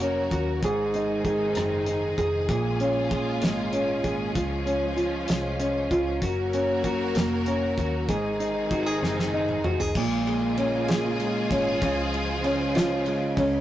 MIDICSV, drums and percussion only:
0, 0, Header, 1, 2, 480
1, 0, Start_track
1, 0, Key_signature, -5, "minor"
1, 0, Tempo, 621762
1, 482, Time_signature, 6, 3, 24, 8
1, 10504, End_track
2, 0, Start_track
2, 0, Title_t, "Drums"
2, 0, Note_on_c, 9, 42, 50
2, 77, Note_off_c, 9, 42, 0
2, 242, Note_on_c, 9, 36, 70
2, 244, Note_on_c, 9, 42, 44
2, 319, Note_off_c, 9, 36, 0
2, 322, Note_off_c, 9, 42, 0
2, 484, Note_on_c, 9, 36, 77
2, 484, Note_on_c, 9, 42, 76
2, 561, Note_off_c, 9, 36, 0
2, 561, Note_off_c, 9, 42, 0
2, 725, Note_on_c, 9, 42, 42
2, 802, Note_off_c, 9, 42, 0
2, 962, Note_on_c, 9, 36, 75
2, 964, Note_on_c, 9, 42, 43
2, 1039, Note_off_c, 9, 36, 0
2, 1041, Note_off_c, 9, 42, 0
2, 1197, Note_on_c, 9, 42, 66
2, 1214, Note_on_c, 9, 37, 88
2, 1275, Note_off_c, 9, 42, 0
2, 1291, Note_off_c, 9, 37, 0
2, 1439, Note_on_c, 9, 42, 46
2, 1516, Note_off_c, 9, 42, 0
2, 1682, Note_on_c, 9, 36, 69
2, 1688, Note_on_c, 9, 42, 41
2, 1760, Note_off_c, 9, 36, 0
2, 1765, Note_off_c, 9, 42, 0
2, 1920, Note_on_c, 9, 42, 71
2, 1921, Note_on_c, 9, 36, 80
2, 1997, Note_off_c, 9, 42, 0
2, 1998, Note_off_c, 9, 36, 0
2, 2162, Note_on_c, 9, 42, 42
2, 2239, Note_off_c, 9, 42, 0
2, 2401, Note_on_c, 9, 42, 39
2, 2402, Note_on_c, 9, 36, 78
2, 2478, Note_off_c, 9, 42, 0
2, 2479, Note_off_c, 9, 36, 0
2, 2638, Note_on_c, 9, 42, 65
2, 2654, Note_on_c, 9, 38, 94
2, 2715, Note_off_c, 9, 42, 0
2, 2731, Note_off_c, 9, 38, 0
2, 2877, Note_on_c, 9, 42, 52
2, 2954, Note_off_c, 9, 42, 0
2, 3120, Note_on_c, 9, 36, 70
2, 3123, Note_on_c, 9, 42, 38
2, 3198, Note_off_c, 9, 36, 0
2, 3200, Note_off_c, 9, 42, 0
2, 3361, Note_on_c, 9, 42, 74
2, 3362, Note_on_c, 9, 36, 88
2, 3438, Note_off_c, 9, 42, 0
2, 3439, Note_off_c, 9, 36, 0
2, 3606, Note_on_c, 9, 42, 44
2, 3683, Note_off_c, 9, 42, 0
2, 3842, Note_on_c, 9, 42, 44
2, 3919, Note_off_c, 9, 42, 0
2, 4075, Note_on_c, 9, 42, 71
2, 4091, Note_on_c, 9, 38, 90
2, 4152, Note_off_c, 9, 42, 0
2, 4168, Note_off_c, 9, 38, 0
2, 4320, Note_on_c, 9, 42, 52
2, 4397, Note_off_c, 9, 42, 0
2, 4562, Note_on_c, 9, 36, 69
2, 4567, Note_on_c, 9, 42, 48
2, 4639, Note_off_c, 9, 36, 0
2, 4644, Note_off_c, 9, 42, 0
2, 4801, Note_on_c, 9, 36, 81
2, 4802, Note_on_c, 9, 42, 73
2, 4878, Note_off_c, 9, 36, 0
2, 4879, Note_off_c, 9, 42, 0
2, 5044, Note_on_c, 9, 42, 44
2, 5121, Note_off_c, 9, 42, 0
2, 5281, Note_on_c, 9, 36, 68
2, 5282, Note_on_c, 9, 42, 47
2, 5358, Note_off_c, 9, 36, 0
2, 5359, Note_off_c, 9, 42, 0
2, 5520, Note_on_c, 9, 42, 70
2, 5536, Note_on_c, 9, 38, 97
2, 5597, Note_off_c, 9, 42, 0
2, 5613, Note_off_c, 9, 38, 0
2, 5760, Note_on_c, 9, 42, 51
2, 5837, Note_off_c, 9, 42, 0
2, 6004, Note_on_c, 9, 36, 67
2, 6010, Note_on_c, 9, 42, 45
2, 6081, Note_off_c, 9, 36, 0
2, 6088, Note_off_c, 9, 42, 0
2, 6243, Note_on_c, 9, 36, 89
2, 6243, Note_on_c, 9, 42, 77
2, 6320, Note_off_c, 9, 36, 0
2, 6320, Note_off_c, 9, 42, 0
2, 6487, Note_on_c, 9, 42, 43
2, 6565, Note_off_c, 9, 42, 0
2, 6723, Note_on_c, 9, 36, 72
2, 6723, Note_on_c, 9, 42, 45
2, 6800, Note_off_c, 9, 36, 0
2, 6800, Note_off_c, 9, 42, 0
2, 6976, Note_on_c, 9, 38, 57
2, 7053, Note_off_c, 9, 38, 0
2, 7099, Note_on_c, 9, 38, 56
2, 7176, Note_off_c, 9, 38, 0
2, 7325, Note_on_c, 9, 47, 62
2, 7402, Note_off_c, 9, 47, 0
2, 7445, Note_on_c, 9, 45, 87
2, 7522, Note_off_c, 9, 45, 0
2, 7565, Note_on_c, 9, 43, 80
2, 7642, Note_off_c, 9, 43, 0
2, 7683, Note_on_c, 9, 49, 92
2, 7684, Note_on_c, 9, 36, 89
2, 7760, Note_off_c, 9, 49, 0
2, 7761, Note_off_c, 9, 36, 0
2, 7929, Note_on_c, 9, 51, 41
2, 8006, Note_off_c, 9, 51, 0
2, 8164, Note_on_c, 9, 51, 58
2, 8241, Note_off_c, 9, 51, 0
2, 8402, Note_on_c, 9, 51, 60
2, 8418, Note_on_c, 9, 38, 100
2, 8479, Note_off_c, 9, 51, 0
2, 8495, Note_off_c, 9, 38, 0
2, 8644, Note_on_c, 9, 51, 48
2, 8722, Note_off_c, 9, 51, 0
2, 8884, Note_on_c, 9, 36, 82
2, 8891, Note_on_c, 9, 51, 60
2, 8961, Note_off_c, 9, 36, 0
2, 8968, Note_off_c, 9, 51, 0
2, 9124, Note_on_c, 9, 36, 101
2, 9124, Note_on_c, 9, 51, 72
2, 9201, Note_off_c, 9, 36, 0
2, 9201, Note_off_c, 9, 51, 0
2, 9371, Note_on_c, 9, 51, 40
2, 9448, Note_off_c, 9, 51, 0
2, 9604, Note_on_c, 9, 51, 57
2, 9681, Note_off_c, 9, 51, 0
2, 9843, Note_on_c, 9, 51, 63
2, 9859, Note_on_c, 9, 38, 105
2, 9920, Note_off_c, 9, 51, 0
2, 9936, Note_off_c, 9, 38, 0
2, 10081, Note_on_c, 9, 51, 49
2, 10159, Note_off_c, 9, 51, 0
2, 10322, Note_on_c, 9, 36, 85
2, 10331, Note_on_c, 9, 51, 59
2, 10400, Note_off_c, 9, 36, 0
2, 10408, Note_off_c, 9, 51, 0
2, 10504, End_track
0, 0, End_of_file